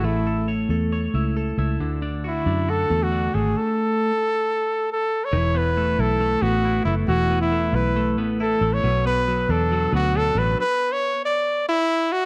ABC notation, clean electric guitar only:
X:1
M:4/4
L:1/8
Q:1/4=137
K:Emix
V:1 name="Clean electric guitar"
[A,EAc] A c A c E A E | D, D F D F A, D A, | z8 | E, B, A, E A, B, E A, |
E, B, A, E A, B, E A, | B,, B, F, D F, B, D F, | z8 |]